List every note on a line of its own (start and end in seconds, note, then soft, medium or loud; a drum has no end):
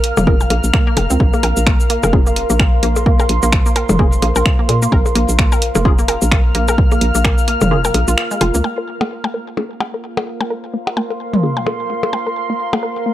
0.00 0.12 A#1 medium
0.00 8.63 A#4 medium
0.00 8.64 F5 medium
0.00 1.59 F6 medium
0.00 closed hi-hat medium
0.17 0.47 F1 medium
0.17 0.22 A#3 medium
0.17 mid tom medium
0.17 percussion blips medium
0.17 shaker soft
0.27 0.35 A#3 medium
0.27 0.35 C#4 medium
0.27 0.35 F4 medium
0.27 0.35 G#4 loud
0.27 0.31 A#4 medium
0.27 kick loud
0.41 percussion blips medium
0.41 shaker soft
0.50 0.61 A#1 medium
0.50 0.60 A#3 medium
0.50 closed hi-hat medium
0.50 percussion blips medium
0.64 0.71 A#1 medium
0.64 shaker soft
0.73 0.77 A#3 loud
0.73 finger snap medium
0.73 kick loud
0.87 0.94 A#3 loud
0.97 1.07 F1 medium
0.97 closed hi-hat medium
0.97 percussion blips medium
1.10 1.18 C#2 medium
1.10 1.15 C4 medium
1.10 shaker soft
1.20 1.31 A#1 loud
1.20 kick loud
1.34 1.38 A#3 medium
1.34 percussion blips medium
1.34 shaker soft
1.43 1.54 A#1 medium
1.43 1.47 A#4 medium
1.43 closed hi-hat medium
1.43 percussion blips medium
1.57 1.99 A#1 medium
1.57 5.31 C6 medium
1.57 shaker medium
1.67 1.73 A#3 medium
1.67 finger snap medium
1.67 kick loud
1.80 shaker soft
1.90 1.96 A#3 medium
1.90 closed hi-hat medium
2.03 2.45 F1 medium
2.03 2.06 A#4 medium
2.03 percussion blips medium
2.03 shaker medium
2.13 2.21 A#3 medium
2.13 2.21 C#4 medium
2.13 2.21 F4 medium
2.13 2.21 G#4 loud
2.13 kick loud
2.27 2.31 A#3 medium
2.27 shaker soft
2.36 closed hi-hat medium
2.50 2.79 A#1 loud
2.50 2.54 A#3 medium
2.50 shaker soft
2.60 2.63 A#4 medium
2.60 finger snap medium
2.60 kick loud
2.60 percussion blips medium
2.83 3.26 A#1 medium
2.83 2.89 A#3 medium
2.83 closed hi-hat medium
2.96 percussion blips medium
2.96 shaker soft
3.06 3.12 A#3 medium
3.06 kick loud
3.19 3.22 A#4 medium
3.19 percussion blips medium
3.19 shaker soft
3.29 3.40 A#1 medium
3.29 closed hi-hat medium
3.43 3.85 A#1 medium
3.43 3.47 A#3 medium
3.43 shaker medium
3.53 finger snap medium
3.53 kick loud
3.66 3.71 A#3 medium
3.66 shaker soft
3.76 3.80 A#4 medium
3.76 closed hi-hat medium
3.76 percussion blips medium
3.89 4.19 F1 medium
3.89 mid tom medium
3.89 percussion blips medium
3.89 shaker medium
3.99 4.05 A#3 medium
3.99 4.07 A#3 medium
3.99 4.07 C#4 medium
3.99 4.07 F4 medium
3.99 4.07 G#4 loud
3.99 kick loud
4.13 shaker soft
4.22 4.33 A#1 medium
4.22 4.29 A#3 medium
4.22 closed hi-hat medium
4.22 percussion blips medium
4.36 4.43 A#1 medium
4.36 4.39 A#4 medium
4.36 percussion blips medium
4.36 shaker medium
4.46 finger snap medium
4.46 kick loud
4.59 4.64 A#3 medium
4.69 4.88 A#2 medium
4.69 closed hi-hat medium
4.69 percussion blips soft
4.82 4.87 A#3 medium
4.82 shaker medium
4.92 5.03 A#1 loud
4.92 4.96 A#4 medium
4.92 kick loud
4.92 percussion blips medium
5.06 percussion blips medium
5.06 shaker soft
5.15 5.26 A#1 medium
5.15 5.22 A#3 medium
5.15 closed hi-hat medium
5.29 5.71 A#1 medium
5.29 8.67 F6 medium
5.29 shaker medium
5.39 5.45 A#3 medium
5.39 finger snap medium
5.39 kick loud
5.52 5.55 A#4 medium
5.52 percussion blips medium
5.52 shaker soft
5.62 closed hi-hat medium
5.75 6.17 F1 medium
5.75 5.80 A#3 medium
5.75 percussion blips medium
5.75 shaker medium
5.85 5.93 A#3 medium
5.85 5.93 C#4 medium
5.85 5.93 F4 medium
5.85 5.93 G#4 loud
5.85 kick loud
5.99 6.03 A#3 medium
5.99 shaker soft
6.08 6.12 A#4 medium
6.08 closed hi-hat medium
6.08 percussion blips medium
6.22 6.51 A#1 loud
6.22 shaker medium
6.32 6.38 A#3 medium
6.32 finger snap medium
6.32 kick loud
6.55 6.98 A#1 medium
6.55 6.61 A#3 medium
6.55 closed hi-hat medium
6.68 6.71 A#4 medium
6.68 percussion blips medium
6.68 percussion blips soft
6.68 shaker medium
6.78 kick loud
6.92 6.96 A#3 medium
6.92 percussion blips medium
6.92 shaker soft
7.01 7.12 A#1 medium
7.01 closed hi-hat medium
7.15 7.57 A#1 medium
7.15 7.19 A#3 medium
7.15 shaker medium
7.25 7.28 A#4 medium
7.25 finger snap medium
7.25 kick loud
7.25 percussion blips medium
7.38 shaker soft
7.48 7.54 A#3 medium
7.48 closed hi-hat medium
7.61 7.91 F1 medium
7.61 mid tom medium
7.61 percussion blips medium
7.61 shaker medium
7.71 7.79 A#3 medium
7.71 7.77 A#3 medium
7.71 7.79 C#4 medium
7.71 7.79 F4 medium
7.71 7.79 G#4 loud
7.85 7.87 A#4 medium
7.85 percussion blips medium
7.85 shaker soft
7.94 8.05 A#1 medium
7.94 closed hi-hat medium
7.94 percussion blips medium
8.08 8.16 A#1 medium
8.08 8.15 F4 medium
8.08 shaker medium
8.18 finger snap medium
8.31 8.36 G#3 medium
8.31 shaker soft
8.41 8.51 F1 medium
8.41 8.50 F4 medium
8.41 closed hi-hat medium
8.41 percussion blips medium
8.54 8.62 C#2 medium
8.54 8.59 A#3 medium
8.54 shaker medium
8.64 8.71 A#3 medium
8.64 13.14 A#4 medium
8.64 percussion blips medium
8.78 8.80 A#4 medium
8.78 13.14 F5 medium
9.01 9.06 A#3 medium
9.01 percussion blips medium
9.24 9.29 A#3 medium
9.24 percussion blips medium
9.34 9.38 A#4 medium
9.57 9.64 A#3 medium
9.57 9.65 A#3 medium
9.57 9.65 C#4 medium
9.57 9.65 F4 medium
9.57 9.65 G#4 medium
9.57 percussion blips medium
9.74 13.14 C6 medium
9.80 9.87 A#3 medium
9.80 percussion blips medium
9.94 9.97 A#4 medium
10.17 10.22 A#3 medium
10.17 percussion blips medium
10.41 10.45 A#3 medium
10.41 percussion blips medium
10.50 10.54 A#4 medium
10.74 10.80 A#3 medium
10.87 percussion blips medium
10.97 11.03 A#3 medium
10.97 percussion blips medium
11.10 11.13 A#4 medium
11.34 11.38 A#3 medium
11.34 mid tom medium
11.43 11.51 A#3 medium
11.43 11.51 C#4 medium
11.43 11.51 F4 medium
11.43 11.51 G#4 medium
11.57 11.61 A#3 medium
11.57 percussion blips medium
11.67 11.70 A#4 medium
11.67 percussion blips medium
11.90 11.96 A#3 medium
12.03 percussion blips medium
12.13 12.19 A#3 medium
12.13 percussion blips medium
12.27 12.29 A#4 medium
12.50 12.54 A#3 medium
12.73 12.78 A#3 medium
12.73 percussion blips medium
12.83 12.87 A#4 medium
13.06 13.12 A#3 medium